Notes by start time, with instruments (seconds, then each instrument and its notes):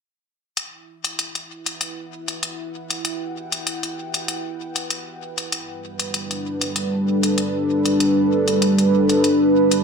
0.57 analog synth pad E4, closed hi-hat
1.04 closed hi-hat
1.19 closed hi-hat
1.35 closed hi-hat
1.42 analog synth pad F#5
1.50 analog synth pad B4
1.66 closed hi-hat
1.81 closed hi-hat
2.28 closed hi-hat
2.43 closed hi-hat
2.80 analog synth pad G5
2.90 closed hi-hat
3.05 closed hi-hat
3.52 closed hi-hat
3.67 closed hi-hat
3.83 closed hi-hat
4.14 closed hi-hat
4.28 closed hi-hat
4.76 closed hi-hat
4.90 closed hi-hat
5.38 closed hi-hat
5.52 analog synth pad G3, closed hi-hat
5.94 analog synth pad D4
6.00 closed hi-hat
6.14 closed hi-hat
6.31 closed hi-hat
6.59 analog synth pad A4, closed hi-hat
6.76 closed hi-hat
7.23 closed hi-hat
7.38 closed hi-hat
7.86 closed hi-hat
8.00 closed hi-hat
8.48 closed hi-hat
8.62 closed hi-hat
8.78 closed hi-hat
9.09 closed hi-hat
9.24 closed hi-hat
9.71 closed hi-hat